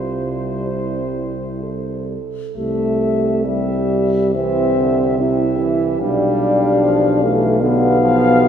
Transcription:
0.00 2.18 C2 soft
0.00 2.18 C3 soft
0.00 2.18 G3 soft
0.00 0.62 F4 soft
0.00 2.11 C5 soft
0.66 1.62 E4 soft
1.61 2.57 A4 soft
2.57 5.97 C2 medium
2.57 3.46 A3 medium
2.57 3.39 G4 medium
2.57 3.39 E5 medium
3.44 4.34 G3 medium
3.44 4.32 G4 medium
3.44 4.32 E5 medium
4.34 4.79 E3 medium
4.34 5.22 C4 loud
4.34 5.18 G4 medium
4.34 5.17 E5 medium
4.78 5.20 D3 medium
5.18 5.62 C3 medium
5.18 6.01 E4 medium
5.18 6.00 G4 medium
5.18 5.99 E5 medium
5.60 6.02 E3 medium
6.00 8.48 B1 medium
6.00 6.83 G3 medium
6.00 7.24 D4 medium
6.00 7.46 G4 medium
6.00 7.58 F5 medium
6.82 7.21 F3 medium
7.22 7.62 E3 medium
7.22 7.63 A3 medium
7.61 8.00 D3 medium
7.61 8.48 B3 medium
7.61 8.48 G4 medium
7.61 8.48 F5 medium
8.01 8.43 F3 medium
8.41 8.48 E3 medium

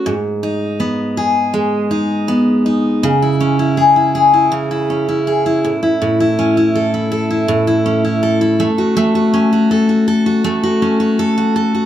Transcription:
0.00 0.13 C#4 medium
0.00 0.14 F#4 medium
0.00 0.14 A4 medium
0.06 3.03 G#2 medium
0.43 1.90 D#4 medium
0.80 2.27 B3 medium
1.17 3.77 G#4 medium
1.54 5.04 G#3 medium
1.91 2.65 D#4 medium
2.28 3.10 B3 medium
2.66 3.11 D#4 medium
3.03 4.50 C#3 medium
3.22 3.59 E4 medium
3.41 4.90 C#4 medium
3.59 3.96 E4 medium
3.77 4.14 G#4 medium
3.96 4.33 E4 medium
4.15 5.26 G#4 medium
4.34 4.70 E4 medium
4.52 5.71 C#3 medium
4.71 5.08 E4 medium
4.90 6.38 C#4 medium
5.09 5.46 E4 medium
5.27 5.71 G#4 medium
5.46 5.82 E4 medium
5.65 6.00 A2 medium
5.83 6.19 E4 medium
6.02 7.47 A2 medium
6.20 6.56 E4 medium
6.39 7.85 C#4 medium
6.57 6.93 E4 medium
6.75 7.11 A4 medium
6.94 7.29 E4 medium
7.12 8.22 A4 medium
7.31 7.66 E4 medium
7.48 8.67 A2 medium
7.67 8.03 E4 medium
7.86 9.33 C#4 medium
8.05 8.40 E4 medium
8.23 9.71 A4 medium
8.41 8.67 E4 medium
8.60 8.95 A3 medium
8.78 9.14 F#4 medium
8.97 10.43 A3 medium
9.15 9.51 F#4 medium
9.34 10.81 C#4 medium
9.53 9.88 F#4 medium
9.71 10.07 A4 medium
9.89 10.25 F#4 medium
10.08 11.18 A4 medium
10.26 10.62 F#4 medium
10.44 11.86 A3 medium
10.63 10.99 F#4 medium
10.82 11.86 C#4 medium
11.00 11.36 F#4 medium
11.19 11.55 A4 medium
11.38 11.73 F#4 medium
11.56 11.86 A4 medium
11.75 11.86 F#4 medium

